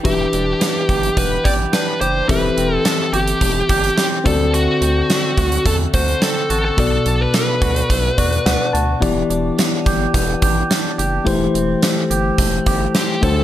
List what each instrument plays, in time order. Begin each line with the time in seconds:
Already playing: clean electric guitar G4
0.03 analog synth bass E1, tine electric piano E3 D4 G4 B4 E5, clean electric guitar E3, lead electric guitar G4, kick, closed hi-hat
0.33 analog synth bass E1, clean electric guitar D4, closed hi-hat
0.61 clean electric guitar B3, snare, closed hi-hat
0.89 analog synth bass G1, clean electric guitar G4, kick, closed hi-hat
1.03 closed hi-hat
1.17 analog synth bass E1, clean electric guitar B3, lead electric guitar B4, kick, closed hi-hat
1.44 analog synth bass A1, clean electric guitar G4, lead electric guitar D5, kick, closed hi-hat
1.72 clean electric guitar D4, lead electric guitar B4, snare, closed hi-hat
2.01 analog synth bass F#1, clean electric guitar G4, lead electric guitar C5, closed hi-hat
2.28 analog synth bass E1, clean electric guitar E3, tine electric piano E3 C4 G4 A4 E5, lead electric guitar B4, kick, closed hi-hat
2.57 analog synth bass E1, clean electric guitar C4, closed hi-hat
2.74 lead electric guitar A4
2.85 clean electric guitar A3, lead electric guitar A4, snare, closed hi-hat
3.13 analog synth bass G1, clean electric guitar G4, lead electric guitar G4, closed hi-hat
3.28 closed hi-hat
3.41 analog synth bass E1, clean electric guitar A3, kick, closed hi-hat
3.69 analog synth bass G1, clean electric guitar G4, kick, closed hi-hat
3.84 closed hi-hat
3.97 clean electric guitar C4, lead electric guitar G4, snare, closed hi-hat
4.24 analog synth bass D2, tine electric piano D3 C4 F#4 A4 D5, clean electric guitar A3, lead electric guitar A4, kick, closed hi-hat
4.53 clean electric guitar A3, lead electric guitar F#4, closed hi-hat
4.82 analog synth bass D2, clean electric guitar C4, closed hi-hat
5.10 clean electric guitar A3, snare, closed hi-hat
5.37 analog synth bass D2, clean electric guitar F#4, kick, closed hi-hat
5.52 closed hi-hat
5.66 analog synth bass E2, clean electric guitar A3, lead electric guitar A4, kick, closed hi-hat
5.94 analog synth bass D2, clean electric guitar F#4, lead electric guitar C5, kick, closed hi-hat
6.08 closed hi-hat
6.22 clean electric guitar C4, lead electric guitar A4, snare, closed hi-hat
6.50 analog synth bass A1, clean electric guitar F#4, closed hi-hat
6.65 lead electric guitar A4
6.77 analog synth bass B1, tine electric piano B2 B3 F#4 A4 D5, clean electric guitar A3, lead electric guitar A4, kick, closed hi-hat
7.06 analog synth bass B1, clean electric guitar D4, closed hi-hat
7.21 lead electric guitar B4
7.34 clean electric guitar A3, lead electric guitar B4, snare, closed hi-hat
7.62 analog synth bass D2, clean electric guitar F#4, kick, closed hi-hat
7.76 closed hi-hat
7.90 analog synth bass B1, clean electric guitar A3, kick, closed hi-hat
8.18 analog synth bass E2, clean electric guitar F#4, tine electric piano D5, kick, closed hi-hat
8.32 closed hi-hat
8.46 analog synth bass D2, clean electric guitar D4, tine electric piano F#5, snare, closed hi-hat
8.73 analog synth bass D2, clean electric guitar F#4, tine electric piano A5, closed hi-hat
9.00 analog synth bass E1, tine electric piano E3 B3 E4 G4 D5, clean electric guitar E3, kick, closed hi-hat
9.30 analog synth bass E1, clean electric guitar D4, closed hi-hat
9.58 clean electric guitar B3, snare, closed hi-hat
9.86 analog synth bass G1, clean electric guitar G4, kick, closed hi-hat
10.14 analog synth bass E1, clean electric guitar B3, kick, closed hi-hat
10.42 analog synth bass A1, clean electric guitar G4, kick, closed hi-hat
10.70 clean electric guitar D4, snare, closed hi-hat
10.98 analog synth bass F#1, clean electric guitar G4, closed hi-hat
11.25 analog synth bass E1, tine electric piano E3 A3 E4 G4 C5, clean electric guitar E3, kick, closed hi-hat
11.54 analog synth bass E1, clean electric guitar C4, closed hi-hat
11.83 clean electric guitar A3, snare, closed hi-hat
12.11 analog synth bass G1, clean electric guitar G4, closed hi-hat
12.38 analog synth bass E1, clean electric guitar A3, kick, closed hi-hat
12.66 analog synth bass G1, clean electric guitar G4, kick, closed hi-hat
12.95 clean electric guitar C4, lead electric guitar G4, snare, closed hi-hat
13.22 analog synth bass D2, tine electric piano D3 A3 D4 F#4 C5, clean electric guitar F#3, lead electric guitar A4, kick, closed hi-hat